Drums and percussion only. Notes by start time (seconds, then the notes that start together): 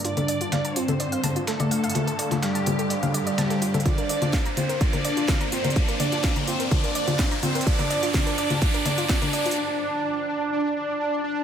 0.04 closed hi-hat
0.17 closed hi-hat, low conga
0.28 closed hi-hat, open hi-hat
0.41 closed hi-hat
0.52 snare, closed hi-hat, low conga
0.65 closed hi-hat
0.76 closed hi-hat, open hi-hat
0.88 closed hi-hat, low conga
1.00 closed hi-hat
1.12 closed hi-hat
1.24 snare, closed hi-hat, open hi-hat, low conga
1.36 closed hi-hat
1.47 snare, closed hi-hat
1.60 closed hi-hat, low conga
1.71 closed hi-hat, open hi-hat
1.83 closed hi-hat
1.90 closed hi-hat
1.95 closed hi-hat, low conga
2.07 closed hi-hat
2.19 closed hi-hat, open hi-hat
2.31 snare, closed hi-hat, low conga
2.42 snare, closed hi-hat
2.55 snare, closed hi-hat
2.66 closed hi-hat, open hi-hat, low conga
2.79 closed hi-hat
2.90 closed hi-hat
3.03 closed hi-hat, low conga
3.14 closed hi-hat, open hi-hat
3.27 closed hi-hat
3.38 snare, closed hi-hat, low conga
3.50 snare, closed hi-hat
3.62 closed hi-hat, open hi-hat
3.74 closed hi-hat, low conga
3.80 closed hi-hat
3.86 kick, closed hi-hat, low conga
3.98 closed hi-hat
4.09 closed hi-hat, open hi-hat
4.22 closed hi-hat, low conga
4.33 kick, snare, closed hi-hat
4.46 closed hi-hat
4.57 closed hi-hat, open hi-hat, low conga
4.69 closed hi-hat
4.81 kick, closed hi-hat
4.93 closed hi-hat, low conga
5.05 snare, closed hi-hat, open hi-hat
5.17 closed hi-hat
5.28 kick, snare, closed hi-hat, low conga
5.41 closed hi-hat
5.52 closed hi-hat, open hi-hat
5.64 closed hi-hat, low conga
5.70 closed hi-hat
5.76 kick, closed hi-hat
5.88 closed hi-hat
6.00 closed hi-hat, open hi-hat, low conga
6.12 snare, closed hi-hat
6.24 kick, snare, closed hi-hat
6.36 snare, closed hi-hat, low conga
6.47 closed hi-hat, open hi-hat
6.60 closed hi-hat
6.71 kick, closed hi-hat, low conga
6.84 closed hi-hat
6.95 closed hi-hat, open hi-hat
7.08 closed hi-hat, low conga
7.19 kick, snare, closed hi-hat
7.31 snare, closed hi-hat
7.43 closed hi-hat, open hi-hat, low conga
7.55 closed hi-hat
7.61 closed hi-hat
7.67 kick, closed hi-hat
7.79 closed hi-hat, low conga
7.90 closed hi-hat, open hi-hat
8.03 closed hi-hat
8.14 kick, snare, closed hi-hat, low conga
8.27 closed hi-hat
8.38 closed hi-hat, open hi-hat
8.50 closed hi-hat, low conga
8.62 kick, closed hi-hat
8.74 closed hi-hat
8.85 snare, closed hi-hat, open hi-hat, low conga
8.98 closed hi-hat
9.09 kick, snare, closed hi-hat
9.22 closed hi-hat, low conga
9.33 closed hi-hat, open hi-hat
9.46 closed hi-hat
9.51 closed hi-hat